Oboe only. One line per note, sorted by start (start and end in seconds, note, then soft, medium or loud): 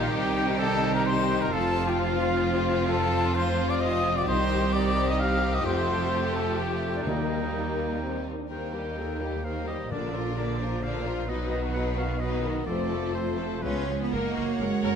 0.00 1.48 G5 medium
1.51 3.96 F5 medium
4.28 5.62 D#5 medium
5.66 8.23 G5 medium
8.51 9.46 G5 soft
9.44 9.67 F5 soft
9.68 9.90 D#5 soft
9.92 10.84 D5 soft
10.83 11.30 F5 soft
11.29 11.50 D#5 medium
11.51 11.61 D#5 medium
11.73 11.84 F#5 medium
11.97 12.22 F5 medium
12.20 12.66 D#5 medium
12.66 13.13 D5 soft
13.14 13.64 C5 soft
13.62 13.87 B4 soft